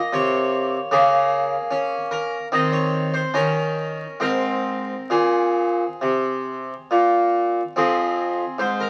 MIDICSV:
0, 0, Header, 1, 2, 480
1, 0, Start_track
1, 0, Key_signature, -4, "major"
1, 0, Tempo, 803213
1, 552, Time_signature, 4, 2, 24, 8
1, 1992, Tempo, 890208
1, 3912, Tempo, 869565
1, 4392, Tempo, 809717
1, 5064, End_track
2, 0, Start_track
2, 0, Title_t, "Harpsichord"
2, 0, Program_c, 0, 6
2, 0, Note_on_c, 0, 58, 55
2, 0, Note_on_c, 0, 75, 96
2, 74, Note_off_c, 0, 75, 0
2, 76, Note_on_c, 0, 48, 77
2, 79, Note_on_c, 0, 73, 90
2, 459, Note_off_c, 0, 48, 0
2, 528, Note_off_c, 0, 58, 0
2, 547, Note_on_c, 0, 49, 67
2, 547, Note_on_c, 0, 58, 53
2, 553, Note_on_c, 0, 68, 102
2, 556, Note_off_c, 0, 73, 0
2, 921, Note_off_c, 0, 49, 0
2, 1020, Note_on_c, 0, 61, 60
2, 1151, Note_off_c, 0, 68, 0
2, 1262, Note_on_c, 0, 70, 68
2, 1404, Note_off_c, 0, 61, 0
2, 1466, Note_off_c, 0, 70, 0
2, 1472, Note_off_c, 0, 58, 0
2, 1507, Note_on_c, 0, 51, 56
2, 1507, Note_on_c, 0, 60, 42
2, 1514, Note_on_c, 0, 75, 97
2, 1628, Note_off_c, 0, 75, 0
2, 1628, Note_on_c, 0, 73, 79
2, 1870, Note_off_c, 0, 73, 0
2, 1875, Note_on_c, 0, 72, 86
2, 1897, Note_off_c, 0, 51, 0
2, 1970, Note_off_c, 0, 60, 0
2, 1994, Note_off_c, 0, 72, 0
2, 1995, Note_on_c, 0, 61, 44
2, 1996, Note_on_c, 0, 51, 53
2, 1996, Note_on_c, 0, 70, 80
2, 2368, Note_off_c, 0, 51, 0
2, 2440, Note_off_c, 0, 61, 0
2, 2457, Note_off_c, 0, 70, 0
2, 2459, Note_on_c, 0, 60, 40
2, 2461, Note_on_c, 0, 44, 57
2, 2464, Note_on_c, 0, 70, 86
2, 2850, Note_off_c, 0, 44, 0
2, 2945, Note_on_c, 0, 46, 52
2, 2949, Note_off_c, 0, 70, 0
2, 2949, Note_on_c, 0, 68, 59
2, 3333, Note_off_c, 0, 46, 0
2, 3437, Note_on_c, 0, 48, 48
2, 3819, Note_off_c, 0, 48, 0
2, 3913, Note_off_c, 0, 68, 0
2, 3920, Note_on_c, 0, 46, 48
2, 4301, Note_off_c, 0, 46, 0
2, 4370, Note_off_c, 0, 60, 0
2, 4391, Note_on_c, 0, 60, 34
2, 4395, Note_on_c, 0, 41, 53
2, 4399, Note_on_c, 0, 68, 63
2, 4780, Note_off_c, 0, 41, 0
2, 4878, Note_off_c, 0, 68, 0
2, 4879, Note_on_c, 0, 44, 44
2, 4885, Note_on_c, 0, 72, 66
2, 4998, Note_off_c, 0, 72, 0
2, 5008, Note_on_c, 0, 70, 59
2, 5064, Note_off_c, 0, 44, 0
2, 5064, Note_off_c, 0, 60, 0
2, 5064, Note_off_c, 0, 70, 0
2, 5064, End_track
0, 0, End_of_file